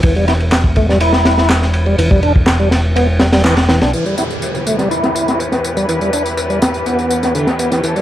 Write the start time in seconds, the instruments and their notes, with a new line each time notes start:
0.03 fingered electric bass E1, tonewheel organ E3, kick, ride
0.16 tonewheel organ G3, ride
0.28 tonewheel organ E4, snare, ride
0.40 ride
0.52 snare, clap, ride
0.64 kick
0.76 tonewheel organ A3, kick, ride
0.89 tonewheel organ G3, snare
1.00 tonewheel organ E4, ride
1.13 snare
1.25 snare, ride
1.38 snare
1.49 snare, clap, ride
1.62 snare
1.73 ride
1.86 tonewheel organ G3
1.98 fingered electric bass E1, tonewheel organ E3, ride
2.11 tonewheel organ G3, kick
2.23 tonewheel organ D4, ride
2.36 kick
2.47 snare, clap, ride
2.60 tonewheel organ G3
2.71 snare, ride
2.96 tonewheel organ B3, ride
3.19 tonewheel organ G3, snare, ride
3.33 tonewheel organ G3, snare, ride
3.44 tonewheel organ E3, snare, clap, ride
3.57 snare, ride
3.69 tonewheel organ E3, snare, ride
3.81 fingered electric bass B1, tonewheel organ D4, snare, ride
3.93 string section E2 E3 G4 B4, tonewheel organ E3, ride, tambourine, downlifter
4.06 tonewheel organ G3, ride, tambourine
4.17 tonewheel organ E4, snare, ride, tambourine
4.30 ride, tambourine
4.42 ride, tambourine
4.55 tambourine
4.67 tonewheel organ A3, ride, tambourine
4.78 tonewheel organ G3, snare, tambourine
4.91 tonewheel organ E4, ride, tambourine
5.04 snare, tambourine
5.15 ride, tambourine
5.28 snare, tambourine
5.39 ride, tambourine
5.52 snare, tambourine
5.64 ride, tambourine
5.77 tonewheel organ G3, tambourine
5.89 tonewheel organ E3, ride, tambourine
6.01 tonewheel organ G3, tambourine
6.13 tonewheel organ D4, ride, tambourine
6.26 tambourine
6.37 ride, tambourine
6.50 tonewheel organ G3, tambourine
6.62 snare, ride, tambourine
6.74 tambourine
6.86 tonewheel organ B3, ride, tambourine
6.99 tambourine
7.11 ride, tambourine
7.23 snare, tambourine
7.35 tonewheel organ D3, open hi-hat, tambourine
7.47 snare, tambourine
7.59 tonewheel organ B3, ride, tambourine
7.72 tonewheel organ E3, snare, tambourine
7.83 tonewheel organ E3, string section A4, ride, tambourine
7.96 tonewheel organ G3, ride, tambourine